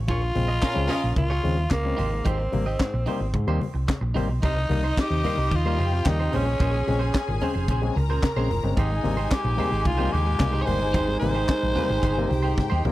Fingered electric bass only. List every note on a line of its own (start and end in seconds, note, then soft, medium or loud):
0.09 0.30 A#1 loud
0.36 0.57 A#1 medium
0.76 0.87 C#2 medium
1.04 1.15 A#1 medium
1.17 1.38 C#2 medium
1.44 1.66 D#2 medium
1.71 1.93 C#2 medium
1.98 2.20 G#1 medium
2.26 2.47 G#1 loud
2.52 2.74 G#1 medium
2.94 3.04 A#1 medium
3.20 3.31 G#1 medium
3.34 3.45 G#2 medium
3.47 3.58 D#2 medium
3.74 3.85 C2 medium
4.01 4.12 A#1 medium
4.16 4.26 G#1 medium
4.29 4.40 B1 medium
4.43 4.65 C2 loud
4.69 4.91 C2 medium
5.11 5.21 D#2 medium
5.37 5.48 C2 medium
5.52 5.79 D#2 loud
5.79 6.00 F2 medium
6.06 6.27 D#2 medium
6.33 6.55 A#1 loud
6.60 6.82 A#1 loud
6.87 7.09 A#1 medium
7.28 7.39 G#1 medium
7.55 7.66 F1 medium
7.68 7.90 A#1 loud
7.96 8.17 C#2 medium
8.36 8.47 A#1 medium
8.50 8.61 F#1 medium
8.64 8.75 G1 medium
8.77 8.99 G#1 loud
9.04 9.26 G#1 medium
9.44 9.56 A#1 medium
9.72 9.83 G#1 medium
9.86 10.07 C2 loud
10.13 10.35 D#2 medium
10.40 10.62 C2 medium
10.67 10.94 G1 medium
10.94 11.16 G#1 loud
11.22 11.43 G#1 medium
11.63 11.74 A#1 medium
11.90 12.01 G#1 medium
12.03 12.25 G1 medium
12.31 12.52 C2 medium
12.72 12.82 D#2 loud
12.85 12.92 C#2 medium